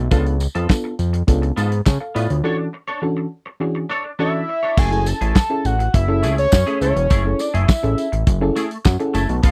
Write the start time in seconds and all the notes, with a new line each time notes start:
0.11 C#2 B3 D4 F4 A4, kick, closed hi-hat, tambourine
0.26 muted clean electric guitar stroke, closed hi-hat
0.40 muted clean electric guitar stroke, closed hi-hat, tambourine
0.55 F2 B3 F4 A4, closed hi-hat
0.69 B3 D4 F4 A4, muted clean electric guitar stroke, kick, snare, clap, tambourine
0.84 muted clean electric guitar stroke
0.99 F2, closed hi-hat, tambourine
1.13 muted clean electric guitar stroke, closed hi-hat
1.27 C#2 B3 D4 F4 A4, muted clean electric guitar stroke, kick, closed hi-hat, tambourine
1.42 muted clean electric guitar stroke, closed hi-hat
1.56 G#2 B3 F4 A4, closed hi-hat, tambourine
1.71 muted clean electric guitar stroke, closed hi-hat
1.86 C#3 C#5 A5, kick, snare, clap, tambourine
2.00 A4 F5, muted clean electric guitar stroke
2.15 A2 B3 F4 B4 D5, closed hi-hat, tambourine
2.30 D2 F4 C#5, muted clean electric guitar stroke, closed hi-hat
2.43 E3 C#4 D4 F#4 A4 C#5
2.58 muted clean electric guitar stroke
2.73 muted clean electric guitar stroke
2.88 D4 A4 C#5
3.02 E3 C#4 D4 F#4 A4, muted clean electric guitar stroke
3.17 muted clean electric guitar stroke
3.46 muted clean electric guitar stroke
3.60 E3 C#4 D4 F#4 G#4, muted clean electric guitar stroke
3.75 muted clean electric guitar stroke
3.89 D4 A4 C#5
4.04 muted clean electric guitar stroke
4.19 E3 C#4 D4 F#4 A4 C#5 E5
4.34 muted clean electric guitar stroke
4.48 muted clean electric guitar stroke
4.63 D4 A4 C#5
4.77 F#1 A3 E4 G#4 G#5, kick, crash, tambourine
4.91 C#4 E4 G#4 A4, muted clean electric guitar stroke, closed hi-hat
5.06 A5, muted clean electric guitar stroke, closed hi-hat, tambourine
5.21 A1 A3 E4 G#4, closed hi-hat
5.36 muted clean electric guitar stroke, kick, snare, clap, tambourine
5.50 C#4 E4 G#4 A4, muted clean electric guitar stroke
5.65 A1 F#5, closed hi-hat, tambourine
5.79 muted clean electric guitar stroke, closed hi-hat
5.94 F#1 E5, muted clean electric guitar stroke, kick, closed hi-hat
6.08 C#4 E4 G#4 A4, muted clean electric guitar stroke
6.23 C#2 A3 E4 G#4, closed hi-hat, tambourine
6.38 C#5, muted clean electric guitar stroke, closed hi-hat
6.52 F#2, muted clean electric guitar stroke, kick, snare, clap, tambourine
6.67 A3 C#4 E4 G#4 A4, closed hi-hat
6.81 C#2 A3 E4 A4 C#5, closed hi-hat, tambourine
6.96 E1, muted clean electric guitar stroke, closed hi-hat
7.10 F#1 A3 E4 G#4, kick, closed hi-hat, tambourine
7.25 C#4 E4 G#4 A4, muted clean electric guitar stroke
7.39 D5, muted clean electric guitar stroke, closed hi-hat, tambourine
7.54 F#1 A3 E4 G#4 E5, closed hi-hat
7.68 muted clean electric guitar stroke, kick, snare, clap, tambourine
7.83 A1 C#4 E4 G#4 A4, muted clean electric guitar stroke, closed hi-hat
7.98 closed hi-hat, tambourine
8.12 A1, muted clean electric guitar stroke, closed hi-hat
8.27 F#1, muted clean electric guitar stroke, kick, closed hi-hat, tambourine
8.41 C#4 E4 G#4 A4, muted clean electric guitar stroke
8.56 A3 E4 G#4, closed hi-hat, tambourine
8.71 muted clean electric guitar stroke, closed hi-hat
8.85 F#2 F#5, kick, snare, clap, tambourine
9.00 C#4 E4 G#4 A4, muted clean electric guitar stroke, closed hi-hat
9.14 F#1 A3 E4 A4 A5, closed hi-hat, tambourine
9.29 B1, muted clean electric guitar stroke, closed hi-hat
9.43 C#2 B3 F4 A4 F5, kick, closed hi-hat, tambourine